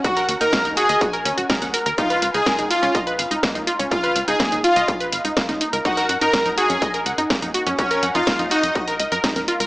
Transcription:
<<
  \new Staff \with { instrumentName = "Violin section" } { \time 4/4 \key des \mixolydian \tempo 4 = 124 ges''8 r16 bes''8 r16 aes''8 r2 | f''8 r16 aes''8 r16 f''8 r2 | f''8 r16 aes''8 r16 f''8 r2 | ges''8 r16 bes''8 r16 aes''8 r2 |
des''8 r16 f''8 r16 ees''8 r2 | }
  \new Staff \with { instrumentName = "Analog synth lead" } { \time 4/4 \key des \mixolydian ges'8 r16 bes'8 r16 aes'8 r2 | f'8 r16 aes'8 r16 f'8 r2 | f'8 r16 aes'8 r16 f'8 r2 | ges'8 r16 bes'8 r16 aes'8 r2 |
des'8 r16 f'8 r16 ees'8 r2 | }
  \new Staff \with { instrumentName = "Synth pluck" } { \time 4/4 \key des \mixolydian ges'16 bes'16 ges''16 ees'16 bes16 ees'16 ges'16 ees''16 ges'16 bes'16 des'16 ges'16 bes'16 ges''16 bes'16 bes'16 | ees'16 ces''16 f''16 ees'16 bes'16 ees'16 f'16 des'16 ees''16 ces''16 f''16 ees'16 bes16 ees'16 f'16 des'16 | f'16 ces''16 f''16 ees'16 bes16 ees'16 f'16 ees''16 f'16 ces''16 f''16 ees'16 bes16 ees'16 ees'16 bes'16 | ees'16 bes'16 ges''16 ees'16 bes'16 ees'16 ges'16 des'16 ees''16 bes'16 ges''16 ees'16 bes16 ees'16 ges'16 des'16 |
ges'16 bes'16 ges''16 ees'16 bes16 ees'16 ges'16 ees''16 ges'16 bes'16 ees''16 bes'16 ees'16 bes'16 f'16 bes'16 | }
  \new Staff \with { instrumentName = "Analog synth bass" } { \clef bass \time 4/4 \key des \mixolydian r8 ees,16 ees,16 r16 ees,16 r16 ees,16 r8 ees,16 ees,,16 r16 ees,16 r16 ees,16 | r8 des,16 des,16 r16 des,16 r16 des,16 r8 aes,,16 des,16 r16 des,16 r16 des,16 | r8 des,16 des,16 r16 des,16 r16 des,16 r8 aes,,16 des,16 r16 des,16 r16 des,16 | r8 ges,16 ges,16 r16 ges,16 r16 ges,16 r8 des,16 ges,16 r16 ges,16 r16 ges,16 |
r8 ges,16 ges,16 r16 ges,16 r16 ges,16 r8 des,16 ges,16 r16 ges,16 r16 des,16 | }
  \new DrumStaff \with { instrumentName = "Drums" } \drummode { \time 4/4 <hh bd>16 hh16 hho16 hh16 <hh bd sn>16 hh16 hho16 hh16 <hh bd>16 hh16 hho16 hh16 <hh bd sn>16 <hh sn>16 hho16 hh16 | <hh bd>16 hh16 hho16 hh16 <hh bd sn>16 hh16 hho16 hh16 <hh bd>16 hh16 hho16 hh16 <hh bd sn>16 hh16 hho16 hh16 | <hh bd>16 hh16 hho16 hh16 <hh bd sn>16 hh16 hho16 hh16 <hh bd>16 hh16 hho16 hh16 <hh bd sn>16 <hh sn>16 hho16 hh16 | <hh bd>16 hh16 hho16 hh16 <hh bd sn>16 hh16 hho16 hh16 <hh bd>16 hh16 hho16 hh16 <hh bd sn>16 hh16 hho16 hh16 |
<hh bd>16 hh16 hho16 hh16 <hh bd sn>16 hh16 hho16 hh16 <hh bd>16 hh16 hho16 hh16 <hh bd sn>16 <hh sn>16 hho16 hh16 | }
>>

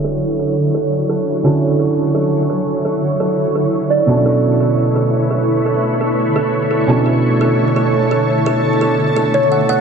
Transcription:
<<
  \new Staff \with { instrumentName = "Kalimba" } { \time 4/4 \key b \minor \tempo 4 = 171 a'8 r8 a'8 r8 a'8 r8 a'8 r8 | a'8 r8 a'8 r8 a'8 r8 a'8 r8 | a'8 r8 a'8 r8 a'8 r8 d''8 r8 | a'8 r8 a'8 r8 a'8 r8 a'8 r8 |
a'8 r8 a'8 r8 a'8 r8 a'8 r8 | a'8 r8 a'8 r8 a'8 r8 a'8 r8 | a'8 r8 a'8 r8 a'8 cis''8 fis''8 fis''8 | }
  \new Staff \with { instrumentName = "Ambient pad" } { \time 4/4 \key b \minor << { <d fis cis''>1~ | <d fis cis''>1~ | <d fis cis''>2.~ <d fis cis''>8 <d a cis''>8~ | <d a cis''>1~ |
<d a cis''>1~ | <d a cis''>1~ | <d a cis''>1 | } \\ { e'1~ | e'1~ | e'2.~ e'8 b'8~ | b'1~ |
b'2.~ b'8 a'8~ | a'1~ | a'1 | } >> }
  \new Staff \with { instrumentName = "Felt piano" } { \time 4/4 \key b \minor <d cis' e' fis' a'>1 | <d cis' e' fis' a'>1~ | <d cis' e' fis' a'>2.~ <d cis' e' fis' a'>8 <b, cis' d' e' fis' a'>8~ | <b, cis' d' e' fis' a'>1~ |
<b, cis' d' e' fis' a'>2.~ <b, cis' d' e' fis' a'>8 <b, cis' d' e' fis' a'>8~ | <b, cis' d' e' fis' a'>1~ | <b, cis' d' e' fis' a'>2.~ <b, cis' d' e' fis' a'>8 r8 | }
>>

